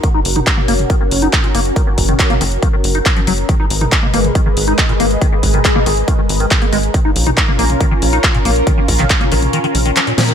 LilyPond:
<<
  \new Staff \with { instrumentName = "Analog synth pad" } { \time 4/4 \key ges \major \tempo 4 = 139 <des' ges' bes'>1~ | <des' ges' bes'>1 | <aes aes' ces'' ees''>1~ | <aes aes' ces'' ees''>1 |
<des' f' bes'>1~ | <des' f' bes'>1 | }
  \new Staff \with { instrumentName = "Acid bass" } { \clef bass \time 4/4 \key ges \major ees16 ees'16 r16 ees'16 r16 bes16 bes16 r16 ees16 ees16 r16 ees'16 r16 bes,16 bes16 r16 | ees16 ees16 r16 ees16 r16 bes16 ees16 r16 ees16 ees16 r16 ees'16 r16 f16 ges16 r16 | ees16 ees'16 r16 ees'16 r16 bes16 bes16 r16 ees16 ees16 r16 ees'16 r16 bes,16 bes16 r16 | ees16 ees16 r16 ees16 r16 bes16 ees16 r16 ees16 ees16 r16 ees16 r16 bes16 aes16 r16 |
ees16 ees'16 r16 ees'16 r16 bes16 bes16 r16 ees16 ees16 r16 ees'16 r16 bes,16 bes16 r16 | ees16 ees16 r16 ees16 r16 bes16 ees16 r16 ees16 ees16 r16 ees16 f16 bes,16 f16 ees16 | }
  \new Staff \with { instrumentName = "Analog synth bass" } { \clef bass \time 4/4 \key ges \major r8 ges,,8 r8 ges,,8 r8 ges,,8 r8 ges,,8 | r8 ges,,8 r8 ges,,8 r8 ges,,8 r8 ges,,8 | r8 aes,,8 r8 aes,,8 r8 aes,,8 r8 aes,,8 | r8 aes,,8 r8 aes,,8 r8 aes,,8 r8 aes,,8 |
r8 bes,,8 r8 bes,,8 r8 bes,,8 r8 bes,,8 | r8 bes,,8 r8 bes,,8 r8 bes,,8 r8 bes,8 | }
  \new DrumStaff \with { instrumentName = "Drums" } \drummode { \time 4/4 <hh bd>8 hho16 <hh toml>16 <hc hh bd>16 toml16 hho16 <hh toml>16 <hh bd>8 hho16 hh16 <hc hh bd>16 hh16 hho16 hh16 | <hh bd>8 <hho bd>16 <hh toml>16 <hc hh bd>16 <hh toml>16 hho16 hh16 <hh bd>8 hho16 hh16 <hc hh bd>16 hh16 hho16 hh16 | <hh bd>8 hho16 toml16 <hc hh bd>16 toml16 hho16 <hh toml>16 <hh bd>8 hho16 hh16 <hc hh bd>16 hh16 hho16 hh16 | <hh bd>8 <hho bd>16 <hh toml>16 <hc hh bd>16 toml16 hho16 hh16 <hh bd>8 hho16 hh16 <hc hh bd>16 hh16 hho16 hh16 |
<hh bd>8 hho16 <hh toml>16 <hc hh bd>16 toml16 hho16 <hh toml>16 <hh bd>8 hho16 hh16 <hc hh bd>16 hh16 hho16 hh16 | <hh bd>8 <hho bd>16 <hc hh toml>16 <hc hh bd>16 <hh toml>16 hho16 <hh toml>16 hh16 hh16 <hho toml>16 hh16 <hc hh>16 hh16 <hho sn>16 hh16 | }
>>